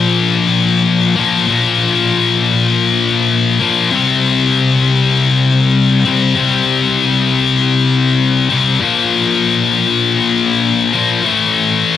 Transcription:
0, 0, Header, 1, 2, 480
1, 0, Start_track
1, 0, Tempo, 610998
1, 1155, Time_signature, 4, 2, 24, 8
1, 9404, End_track
2, 0, Start_track
2, 0, Title_t, "Distorted electric guitar"
2, 0, Program_c, 0, 30
2, 0, Note_on_c, 0, 46, 91
2, 0, Note_on_c, 0, 53, 93
2, 0, Note_on_c, 0, 58, 105
2, 898, Note_off_c, 0, 46, 0
2, 900, Note_off_c, 0, 58, 0
2, 907, Note_off_c, 0, 53, 0
2, 909, Note_on_c, 0, 58, 99
2, 927, Note_on_c, 0, 53, 85
2, 938, Note_on_c, 0, 46, 77
2, 1138, Note_off_c, 0, 58, 0
2, 1140, Note_off_c, 0, 46, 0
2, 1147, Note_off_c, 0, 53, 0
2, 1149, Note_on_c, 0, 46, 89
2, 1165, Note_on_c, 0, 53, 89
2, 1178, Note_on_c, 0, 58, 98
2, 2820, Note_off_c, 0, 46, 0
2, 2823, Note_off_c, 0, 58, 0
2, 2828, Note_off_c, 0, 53, 0
2, 2833, Note_on_c, 0, 58, 89
2, 2848, Note_on_c, 0, 53, 81
2, 2862, Note_on_c, 0, 46, 70
2, 3061, Note_off_c, 0, 58, 0
2, 3069, Note_off_c, 0, 53, 0
2, 3072, Note_off_c, 0, 46, 0
2, 3076, Note_on_c, 0, 48, 86
2, 3092, Note_on_c, 0, 55, 80
2, 3103, Note_on_c, 0, 60, 90
2, 4742, Note_off_c, 0, 48, 0
2, 4744, Note_off_c, 0, 60, 0
2, 4751, Note_off_c, 0, 55, 0
2, 4754, Note_on_c, 0, 60, 89
2, 4766, Note_on_c, 0, 55, 83
2, 4778, Note_on_c, 0, 48, 70
2, 4979, Note_off_c, 0, 48, 0
2, 4981, Note_off_c, 0, 60, 0
2, 4988, Note_off_c, 0, 55, 0
2, 4989, Note_on_c, 0, 48, 83
2, 5005, Note_on_c, 0, 55, 92
2, 5015, Note_on_c, 0, 60, 83
2, 6658, Note_off_c, 0, 48, 0
2, 6665, Note_off_c, 0, 60, 0
2, 6666, Note_off_c, 0, 55, 0
2, 6675, Note_on_c, 0, 60, 89
2, 6688, Note_on_c, 0, 55, 85
2, 6700, Note_on_c, 0, 48, 74
2, 6901, Note_off_c, 0, 60, 0
2, 6908, Note_off_c, 0, 55, 0
2, 6911, Note_off_c, 0, 48, 0
2, 6914, Note_on_c, 0, 46, 90
2, 6931, Note_on_c, 0, 53, 91
2, 6939, Note_on_c, 0, 58, 85
2, 8580, Note_off_c, 0, 46, 0
2, 8581, Note_off_c, 0, 58, 0
2, 8588, Note_off_c, 0, 53, 0
2, 8590, Note_on_c, 0, 58, 95
2, 8602, Note_on_c, 0, 53, 87
2, 8617, Note_on_c, 0, 46, 74
2, 8818, Note_off_c, 0, 58, 0
2, 8824, Note_off_c, 0, 53, 0
2, 8825, Note_off_c, 0, 46, 0
2, 8828, Note_on_c, 0, 45, 77
2, 8843, Note_on_c, 0, 52, 89
2, 8857, Note_on_c, 0, 57, 103
2, 9404, Note_off_c, 0, 45, 0
2, 9404, Note_off_c, 0, 52, 0
2, 9404, Note_off_c, 0, 57, 0
2, 9404, End_track
0, 0, End_of_file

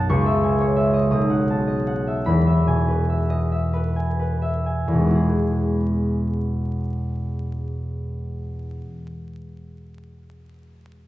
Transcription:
0, 0, Header, 1, 2, 480
1, 0, Start_track
1, 0, Key_signature, 4, "major"
1, 0, Tempo, 672646
1, 64, Time_signature, 6, 3, 24, 8
1, 546, Tempo, 720288
1, 1026, Tempo, 779221
1, 1506, Tempo, 828729
1, 1986, Tempo, 892857
1, 3906, Tempo, 878477
1, 6317, End_track
2, 0, Start_track
2, 0, Title_t, "Harp"
2, 0, Program_c, 0, 46
2, 0, Note_on_c, 0, 35, 75
2, 0, Note_on_c, 0, 42, 55
2, 0, Note_on_c, 0, 75, 53
2, 0, Note_on_c, 0, 78, 58
2, 0, Note_on_c, 0, 81, 61
2, 0, Note_on_c, 0, 87, 85
2, 66, Note_on_c, 0, 37, 73
2, 69, Note_on_c, 0, 85, 81
2, 84, Note_off_c, 0, 81, 0
2, 87, Note_off_c, 0, 78, 0
2, 89, Note_off_c, 0, 42, 0
2, 90, Note_off_c, 0, 75, 0
2, 94, Note_off_c, 0, 35, 0
2, 94, Note_off_c, 0, 87, 0
2, 185, Note_on_c, 0, 76, 54
2, 311, Note_on_c, 0, 80, 59
2, 429, Note_on_c, 0, 73, 51
2, 536, Note_off_c, 0, 76, 0
2, 544, Note_on_c, 0, 76, 57
2, 660, Note_on_c, 0, 75, 51
2, 774, Note_on_c, 0, 35, 62
2, 779, Note_on_c, 0, 87, 74
2, 800, Note_off_c, 0, 76, 0
2, 802, Note_off_c, 0, 37, 0
2, 802, Note_off_c, 0, 85, 0
2, 803, Note_off_c, 0, 73, 0
2, 805, Note_off_c, 0, 80, 0
2, 864, Note_off_c, 0, 75, 0
2, 900, Note_on_c, 0, 78, 54
2, 1036, Note_on_c, 0, 81, 52
2, 1142, Note_on_c, 0, 75, 47
2, 1253, Note_off_c, 0, 78, 0
2, 1260, Note_on_c, 0, 78, 55
2, 1388, Note_on_c, 0, 76, 44
2, 1501, Note_on_c, 0, 83, 71
2, 1504, Note_on_c, 0, 40, 55
2, 1522, Note_off_c, 0, 35, 0
2, 1523, Note_off_c, 0, 87, 0
2, 1525, Note_off_c, 0, 75, 0
2, 1525, Note_off_c, 0, 78, 0
2, 1530, Note_off_c, 0, 81, 0
2, 1592, Note_off_c, 0, 76, 0
2, 1623, Note_on_c, 0, 76, 46
2, 1739, Note_on_c, 0, 47, 40
2, 1743, Note_on_c, 0, 80, 43
2, 1863, Note_on_c, 0, 71, 44
2, 1980, Note_off_c, 0, 76, 0
2, 1987, Note_on_c, 0, 76, 48
2, 2096, Note_on_c, 0, 75, 44
2, 2208, Note_off_c, 0, 76, 0
2, 2215, Note_on_c, 0, 76, 45
2, 2297, Note_off_c, 0, 75, 0
2, 2323, Note_off_c, 0, 71, 0
2, 2329, Note_on_c, 0, 71, 49
2, 2445, Note_off_c, 0, 80, 0
2, 2452, Note_on_c, 0, 80, 46
2, 2571, Note_off_c, 0, 71, 0
2, 2577, Note_on_c, 0, 71, 42
2, 2692, Note_off_c, 0, 76, 0
2, 2698, Note_on_c, 0, 76, 45
2, 2820, Note_off_c, 0, 80, 0
2, 2827, Note_on_c, 0, 80, 47
2, 2938, Note_off_c, 0, 40, 0
2, 2944, Note_on_c, 0, 40, 51
2, 2967, Note_off_c, 0, 47, 0
2, 2974, Note_on_c, 0, 47, 46
2, 3004, Note_on_c, 0, 56, 46
2, 3034, Note_on_c, 0, 59, 44
2, 3062, Note_on_c, 0, 64, 43
2, 3091, Note_on_c, 0, 68, 43
2, 3633, Note_off_c, 0, 83, 0
2, 4687, Note_off_c, 0, 71, 0
2, 4809, Note_off_c, 0, 76, 0
2, 4879, Note_off_c, 0, 56, 0
2, 4909, Note_off_c, 0, 59, 0
2, 4938, Note_off_c, 0, 64, 0
2, 4940, Note_off_c, 0, 80, 0
2, 4967, Note_off_c, 0, 68, 0
2, 5060, Note_off_c, 0, 40, 0
2, 5090, Note_off_c, 0, 47, 0
2, 6317, End_track
0, 0, End_of_file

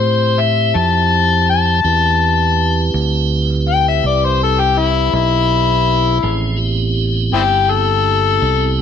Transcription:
0, 0, Header, 1, 4, 480
1, 0, Start_track
1, 0, Key_signature, 0, "minor"
1, 0, Tempo, 729927
1, 1209, Time_signature, 12, 3, 24, 8
1, 5799, End_track
2, 0, Start_track
2, 0, Title_t, "Harmonica"
2, 0, Program_c, 0, 22
2, 0, Note_on_c, 0, 72, 76
2, 268, Note_on_c, 0, 76, 71
2, 277, Note_off_c, 0, 72, 0
2, 501, Note_on_c, 0, 81, 75
2, 511, Note_off_c, 0, 76, 0
2, 961, Note_off_c, 0, 81, 0
2, 985, Note_on_c, 0, 81, 82
2, 1910, Note_off_c, 0, 81, 0
2, 2428, Note_on_c, 0, 79, 94
2, 2531, Note_off_c, 0, 79, 0
2, 2553, Note_on_c, 0, 76, 74
2, 2653, Note_off_c, 0, 76, 0
2, 2670, Note_on_c, 0, 74, 72
2, 2791, Note_on_c, 0, 72, 70
2, 2801, Note_off_c, 0, 74, 0
2, 2892, Note_off_c, 0, 72, 0
2, 2916, Note_on_c, 0, 69, 75
2, 3026, Note_on_c, 0, 67, 69
2, 3036, Note_off_c, 0, 69, 0
2, 3144, Note_on_c, 0, 64, 85
2, 3154, Note_off_c, 0, 67, 0
2, 3370, Note_off_c, 0, 64, 0
2, 3386, Note_on_c, 0, 64, 85
2, 4312, Note_off_c, 0, 64, 0
2, 4827, Note_on_c, 0, 60, 72
2, 4827, Note_on_c, 0, 64, 72
2, 4827, Note_on_c, 0, 67, 103
2, 4868, Note_off_c, 0, 64, 0
2, 4878, Note_off_c, 0, 60, 0
2, 5065, Note_on_c, 0, 69, 90
2, 5075, Note_off_c, 0, 67, 0
2, 5757, Note_off_c, 0, 69, 0
2, 5799, End_track
3, 0, Start_track
3, 0, Title_t, "Tonewheel organ"
3, 0, Program_c, 1, 16
3, 0, Note_on_c, 1, 60, 66
3, 0, Note_on_c, 1, 64, 61
3, 0, Note_on_c, 1, 67, 61
3, 0, Note_on_c, 1, 72, 61
3, 1182, Note_off_c, 1, 60, 0
3, 1183, Note_off_c, 1, 64, 0
3, 1184, Note_off_c, 1, 72, 0
3, 1187, Note_off_c, 1, 67, 0
3, 1212, Note_on_c, 1, 67, 59
3, 1214, Note_on_c, 1, 60, 59
3, 1215, Note_on_c, 1, 64, 62
3, 1217, Note_on_c, 1, 71, 65
3, 4065, Note_off_c, 1, 67, 0
3, 4066, Note_off_c, 1, 60, 0
3, 4067, Note_off_c, 1, 64, 0
3, 4067, Note_off_c, 1, 71, 0
3, 4096, Note_on_c, 1, 53, 57
3, 4096, Note_on_c, 1, 68, 52
3, 4099, Note_on_c, 1, 60, 59
3, 4099, Note_on_c, 1, 61, 61
3, 4317, Note_off_c, 1, 60, 0
3, 4320, Note_on_c, 1, 59, 61
3, 4321, Note_on_c, 1, 64, 67
3, 4325, Note_on_c, 1, 60, 57
3, 4326, Note_on_c, 1, 67, 58
3, 4333, Note_off_c, 1, 53, 0
3, 4333, Note_off_c, 1, 68, 0
3, 4334, Note_off_c, 1, 61, 0
3, 5799, Note_off_c, 1, 59, 0
3, 5799, Note_off_c, 1, 60, 0
3, 5799, Note_off_c, 1, 64, 0
3, 5799, Note_off_c, 1, 67, 0
3, 5799, End_track
4, 0, Start_track
4, 0, Title_t, "Fingered electric bass"
4, 0, Program_c, 2, 33
4, 0, Note_on_c, 2, 45, 74
4, 474, Note_off_c, 2, 45, 0
4, 493, Note_on_c, 2, 41, 81
4, 1189, Note_off_c, 2, 41, 0
4, 1212, Note_on_c, 2, 40, 70
4, 1908, Note_off_c, 2, 40, 0
4, 1934, Note_on_c, 2, 38, 78
4, 2630, Note_off_c, 2, 38, 0
4, 2656, Note_on_c, 2, 36, 81
4, 3351, Note_off_c, 2, 36, 0
4, 3375, Note_on_c, 2, 35, 81
4, 4071, Note_off_c, 2, 35, 0
4, 4099, Note_on_c, 2, 33, 77
4, 4794, Note_off_c, 2, 33, 0
4, 4811, Note_on_c, 2, 31, 80
4, 5510, Note_off_c, 2, 31, 0
4, 5536, Note_on_c, 2, 36, 84
4, 5799, Note_off_c, 2, 36, 0
4, 5799, End_track
0, 0, End_of_file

